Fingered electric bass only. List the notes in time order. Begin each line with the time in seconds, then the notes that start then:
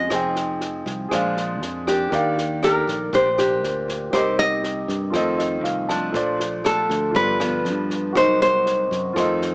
0.10 F1
0.86 C2
1.12 A#1
1.61 F2
2.12 D#2
2.87 A#1
3.13 A#1
3.63 D2
4.13 C2
4.88 G2
5.14 F2
5.63 C2
6.14 A#1
6.89 D2
7.15 G1
7.65 G2
8.15 C2
8.91 F#2
9.16 F2